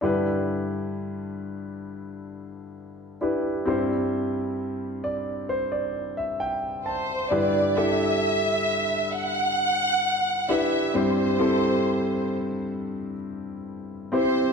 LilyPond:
<<
  \new Staff \with { instrumentName = "Violin section" } { \time 4/4 \key g \major \tempo 4 = 66 r1 | r2. r8 c''8 | d''8 e''4. fis''4. e''8 | c''4. r2 c''8 | }
  \new Staff \with { instrumentName = "Grand piano" } { \time 4/4 \key g \major << { r1 | r4. d''8 c''16 d''8 e''16 g''8 a''8 | r1 | r1 | } \\ { <d' e' g' b'>2.~ <d' e' g' b'>8 <d' e' g' b'>8 | <c' e' g' c''>1 | <d' e' g' b'>8 <d' e' g' a'>2 r4 <d' e' g' b'>8 | <c' e' g' c''>8 <c' e' g' a'>2 r4 <c' e' g' c''>8 | } >> }
  \new Staff \with { instrumentName = "Grand piano" } { \clef bass \time 4/4 \key g \major <g, d>1 | <g, g>1 | <g, d>1 | <g, g>1 | }
>>